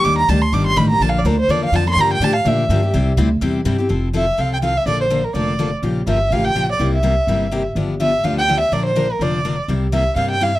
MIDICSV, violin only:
0, 0, Header, 1, 2, 480
1, 0, Start_track
1, 0, Tempo, 240964
1, 96, Time_signature, 4, 2, 24, 8
1, 21105, End_track
2, 0, Start_track
2, 0, Title_t, "Violin"
2, 0, Program_c, 0, 40
2, 80, Note_on_c, 0, 86, 114
2, 348, Note_off_c, 0, 86, 0
2, 360, Note_on_c, 0, 82, 104
2, 580, Note_on_c, 0, 81, 89
2, 610, Note_off_c, 0, 82, 0
2, 832, Note_on_c, 0, 84, 94
2, 862, Note_off_c, 0, 81, 0
2, 1068, Note_on_c, 0, 86, 86
2, 1098, Note_off_c, 0, 84, 0
2, 1313, Note_off_c, 0, 86, 0
2, 1324, Note_on_c, 0, 84, 111
2, 1538, Note_on_c, 0, 83, 95
2, 1568, Note_off_c, 0, 84, 0
2, 1777, Note_off_c, 0, 83, 0
2, 1789, Note_on_c, 0, 82, 110
2, 2036, Note_on_c, 0, 81, 88
2, 2066, Note_off_c, 0, 82, 0
2, 2173, Note_on_c, 0, 77, 89
2, 2203, Note_off_c, 0, 81, 0
2, 2356, Note_on_c, 0, 74, 72
2, 2386, Note_off_c, 0, 77, 0
2, 2514, Note_on_c, 0, 70, 77
2, 2544, Note_off_c, 0, 74, 0
2, 2772, Note_off_c, 0, 70, 0
2, 2784, Note_on_c, 0, 72, 95
2, 2999, Note_on_c, 0, 74, 83
2, 3029, Note_off_c, 0, 72, 0
2, 3254, Note_off_c, 0, 74, 0
2, 3281, Note_on_c, 0, 77, 97
2, 3499, Note_on_c, 0, 81, 86
2, 3528, Note_off_c, 0, 77, 0
2, 3744, Note_off_c, 0, 81, 0
2, 3775, Note_on_c, 0, 84, 116
2, 3991, Note_on_c, 0, 82, 105
2, 4021, Note_off_c, 0, 84, 0
2, 4230, Note_off_c, 0, 82, 0
2, 4246, Note_on_c, 0, 79, 102
2, 4461, Note_on_c, 0, 81, 117
2, 4491, Note_off_c, 0, 79, 0
2, 4681, Note_off_c, 0, 81, 0
2, 4693, Note_on_c, 0, 77, 92
2, 4944, Note_on_c, 0, 76, 85
2, 4974, Note_off_c, 0, 77, 0
2, 5880, Note_off_c, 0, 76, 0
2, 8307, Note_on_c, 0, 76, 80
2, 8766, Note_on_c, 0, 77, 80
2, 8796, Note_off_c, 0, 76, 0
2, 9016, Note_off_c, 0, 77, 0
2, 9032, Note_on_c, 0, 79, 94
2, 9122, Note_off_c, 0, 79, 0
2, 9246, Note_on_c, 0, 77, 81
2, 9504, Note_on_c, 0, 76, 89
2, 9534, Note_off_c, 0, 77, 0
2, 9707, Note_off_c, 0, 76, 0
2, 9723, Note_on_c, 0, 74, 86
2, 9957, Note_off_c, 0, 74, 0
2, 9981, Note_on_c, 0, 72, 76
2, 10447, Note_on_c, 0, 70, 70
2, 10477, Note_off_c, 0, 72, 0
2, 10659, Note_off_c, 0, 70, 0
2, 10683, Note_on_c, 0, 74, 67
2, 11364, Note_off_c, 0, 74, 0
2, 12113, Note_on_c, 0, 76, 83
2, 12595, Note_on_c, 0, 77, 91
2, 12625, Note_off_c, 0, 76, 0
2, 12851, Note_on_c, 0, 79, 101
2, 12881, Note_off_c, 0, 77, 0
2, 13326, Note_off_c, 0, 79, 0
2, 13393, Note_on_c, 0, 74, 77
2, 13682, Note_off_c, 0, 74, 0
2, 13841, Note_on_c, 0, 76, 73
2, 15180, Note_off_c, 0, 76, 0
2, 15965, Note_on_c, 0, 76, 91
2, 16423, Note_on_c, 0, 77, 86
2, 16453, Note_off_c, 0, 76, 0
2, 16683, Note_off_c, 0, 77, 0
2, 16696, Note_on_c, 0, 79, 103
2, 17126, Note_off_c, 0, 79, 0
2, 17138, Note_on_c, 0, 76, 86
2, 17390, Note_on_c, 0, 74, 86
2, 17419, Note_off_c, 0, 76, 0
2, 17639, Note_off_c, 0, 74, 0
2, 17651, Note_on_c, 0, 72, 81
2, 18166, Note_on_c, 0, 70, 68
2, 18196, Note_off_c, 0, 72, 0
2, 18378, Note_on_c, 0, 74, 74
2, 18408, Note_off_c, 0, 70, 0
2, 19101, Note_off_c, 0, 74, 0
2, 19786, Note_on_c, 0, 76, 89
2, 20227, Note_off_c, 0, 76, 0
2, 20256, Note_on_c, 0, 77, 83
2, 20502, Note_off_c, 0, 77, 0
2, 20536, Note_on_c, 0, 79, 87
2, 20775, Note_on_c, 0, 77, 84
2, 20805, Note_off_c, 0, 79, 0
2, 21019, Note_on_c, 0, 76, 89
2, 21049, Note_off_c, 0, 77, 0
2, 21105, Note_off_c, 0, 76, 0
2, 21105, End_track
0, 0, End_of_file